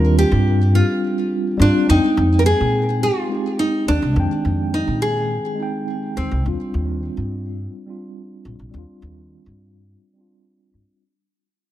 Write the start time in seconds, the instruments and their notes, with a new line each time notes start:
Already playing: upright bass D#2, tine electric piano G3 C4 D4 F4, nylon-string guitar A#4
0.19 nylon-string guitar G4
0.32 upright bass G2
0.75 nylon-string guitar F4
1.57 upright bass G2, tine electric piano G3 C4 D4 F4
1.62 nylon-string guitar D4
1.84 tine electric piano G#3 C4
1.89 upright bass F2, tine electric piano D#4 G5, nylon-string guitar D#4
2.17 upright bass F2
2.39 nylon-string guitar A#4
2.46 nylon-string guitar G#4
2.61 upright bass A#2
3.03 nylon-string guitar F4
3.29 tine electric piano G#3 C4 D#4 G4
3.59 nylon-string guitar D#4
3.88 upright bass D#2, nylon-string guitar D4
4.02 upright bass C2
4.13 upright bass F2, tine electric piano G#3 C4
4.17 tine electric piano D#3 G5
4.45 upright bass F2
4.74 nylon-string guitar D#4
4.87 upright bass A#2
5.02 nylon-string guitar G#4
5.55 tine electric piano G#3 C4
5.60 tine electric piano D#4 G5
6.17 upright bass D#2, nylon-string guitar C4
6.31 upright bass C2
6.41 tine electric piano G3 C4
6.46 upright bass D#2, tine electric piano D4 F4
6.74 upright bass D#2
7.17 upright bass G2
7.86 tine electric piano G3 C4 D4 F4
8.45 upright bass A#1
8.59 upright bass A#1
8.71 upright bass D#2, tine electric piano G3 C4
8.75 tine electric piano D4 F4
9.02 upright bass D#2
9.46 upright bass G2
10.13 tine electric piano G3 C4
10.18 tine electric piano D4 F4
10.74 upright bass G2